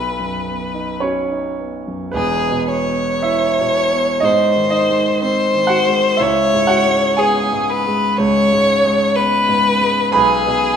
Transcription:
Already playing: B1 B4
0.19 F#2
0.48 B3
0.74 D#4
1.00 C#4 F#4 C#5
1.31 D#4
1.60 B3
1.87 F#2
2.11 E1 E2 B3 G#4 B4
2.50 B2
2.69 C#5
2.88 B3
3.22 E4 E5
3.59 B2
3.91 B3
4.20 G#2 D#4 C5 D#5
4.56 D#3
4.70 D#4 D#5
4.89 G#3
5.22 C4 C5
5.54 D#3
5.67 F#4 F#5
5.87 G#3
6.17 C#2 E4 E5
6.21 C#5
6.53 G#2
6.67 F#4 F#5
6.86 G#3
7.17 B3 G#4 G#5
7.53 G#2
7.69 B4
7.87 G#3
8.17 C#2 C#5
8.52 G#2
8.84 G#3
9.15 B3 B4
9.48 G#2
9.81 G#3
10.12 B1 G#4 B4 B5
10.46 B2

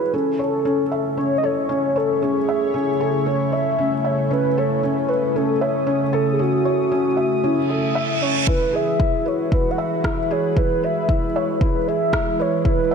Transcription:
Already playing: E3 G#3 E4 F#4 G#4 B4
0.14 C#3 C#4 A4
0.27 A3
0.39 C#5
0.65 C#4
0.92 E5
1.17 C#4 C#5
1.38 D#5
1.43 A4 C#5
1.69 C#4 C#5
1.96 A4 C#5
2.22 C#4 G#4
2.49 E5
2.74 C#4
3.00 A4
3.26 C#4 C#5
3.52 C#5 E5
3.78 C#4
4.04 C#5 E5
4.31 C#4 B4
4.58 A4 C#5
4.83 C#4 D#6
5.08 B4 C#5
5.36 C#4 A4
5.61 C#5 E5
5.87 C#4
6.13 A4
6.33 G#4
6.39 C#4 F#4
6.65 C#5
6.91 C#4
7.17 E5
7.43 C#4 E4, reverse cymbal
7.70 A4 E5
7.95 E5
8.22 C#4 C#5
8.47 E1 E3 E4 B4, kick
8.72 G#3 G#4 E5
8.81 F#4
9.00 E4, kick
9.25 B4 C#5
9.51 E4 B4, kick
9.71 F#5
9.78 E5
10.04 E4, kick, cross-stick
10.31 G#4 C#5
10.57 E4 B4, kick
10.83 B4 E5
11.09 E4, kick
11.36 C#5 E5
11.61 E4 B4, kick
11.88 G#4 E5
12.13 E4, kick, cross-stick
12.38 G#4 B4 C#5
12.65 E4 B4, kick
12.82 C#5
12.91 E5

